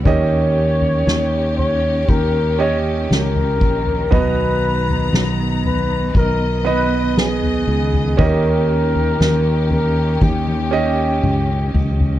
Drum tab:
SD |----o-------o---|----o-------o---|----o-----------|
T1 |----------------|----------------|--------oo------|
T2 |----------------|----------------|------------o---|
FT |o--o--o-o----o-o|o--o--o------o-o|o--o--o-------oo|
BD |o-------o-----o-|o-------o-------|o-------o-------|